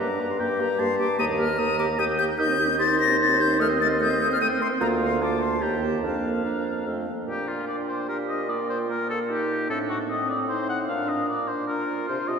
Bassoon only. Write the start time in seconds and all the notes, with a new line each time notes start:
0.01 G2
0.40 G2
0.80 G2
1.19 D#2
1.59 D#2
1.99 D#2
2.39 D#2
4.81 D2
5.62 D#2
6.03 F2
6.86 F2
7.28 A#2
9.70 A2
10.89 A#2
12.09 C3
12.29 C3